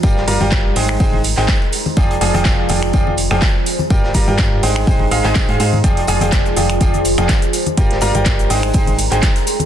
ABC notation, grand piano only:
X:1
M:4/4
L:1/16
Q:"Swing 16ths" 1/4=124
K:Fdor
V:1 name="Grand piano"
[G,FBdg] z [G,FBdb] [G,FBdg]3 [A,EAcg]2 [A,EAcg] z2 [A,EAcg] z4 | [F,FAdg] z [F,FAda] [F,FAdg]3 [F,FAdg]2 [F,FAdg] z2 [F,FAdg] z4 | [G,FBdg] z [G,FBdb] [G,FBdg]3 [A,EAcg]2 [A,EAcg] z [A,EAcf] [A,EAca] [A,Ac] [A,EAcf] [EAcf] z | [F,FAdg] z [F,FAda] [F,FAdg]3 [F,FAdg]2 [F,FAdg] z2 [F,FAdg] z4 |
[G,FBdg] z [G,FBdb] [G,FBdg]3 [A,EAcg]2 [A,EAcg] z2 [A,EAcg] z4 |]